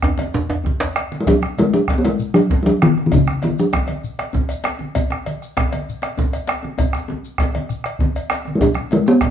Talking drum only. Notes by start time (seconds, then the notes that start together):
1.21 G#3
1.28 F#3
1.59 G#3
1.74 F#3
1.98 B3
2.05 G#3
2.34 F#3
2.63 F#3 G#3
2.82 D#3
3.06 D#3
3.14 C#3
3.44 D#3
3.60 F#3
8.55 G#3
8.61 F#3
8.93 G#3
9.08 B3